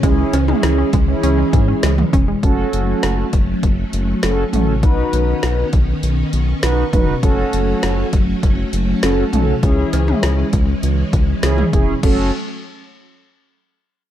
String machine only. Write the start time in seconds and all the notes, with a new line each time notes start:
Already playing: C#4
0.03 E3 G#3
2.43 F#3 A3 C#4
4.83 D#3 B3
7.23 F#3 A3
9.63 E3 G#3
12.03 F#3 A3 C#4